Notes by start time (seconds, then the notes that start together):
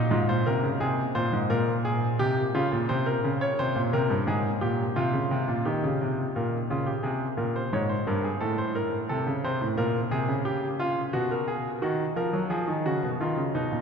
Already playing: D#4
0.11 G#2 F4
0.29 A#2 C5
0.46 C3 A#4
0.63 C#3
0.80 C3 G#4
1.15 A#2 C5
1.33 G#2
1.50 A#2 A#4
1.85 G#4
2.19 C3 G4
2.55 C#3 F4
2.72 A#2
2.89 C3 C5
3.06 A#4
3.24 C#3
3.41 C#5
3.59 C3 C5
3.76 A#2
3.93 C3 A#4
4.10 G2
4.27 G#2 G#4
4.61 A#2 G4
4.96 C3 F4
5.13 C#3
5.31 C3
5.48 A#2
5.65 D#3 G4
5.84 C#3
6.01 C3
6.36 A#2 A#4
6.70 C#3 F4
6.87 G4
7.03 C3 G#4
7.37 A#2 A#4
7.56 C5
7.73 G#2 C#5
7.89 C5
8.07 G2 A#4
8.24 G#4
8.41 A2 A4
8.58 C5
8.75 A#4
9.09 C3 A4
9.27 C#3
9.44 C3 C5
9.61 A2
9.77 A#2 A#4
10.11 C3 G#4
10.29 C#3
10.45 G4
10.79 F4
11.13 B2 F#4
11.31 A#4
11.48 G#4
11.82 D#3 F#4
12.16 F3 A#4
12.33 F#3
12.50 F3 G#4
12.68 D#3
12.86 C#3 F#4
13.03 B2
13.21 D#3 F4
13.38 C#3
13.55 B2 D#4
13.71 A#2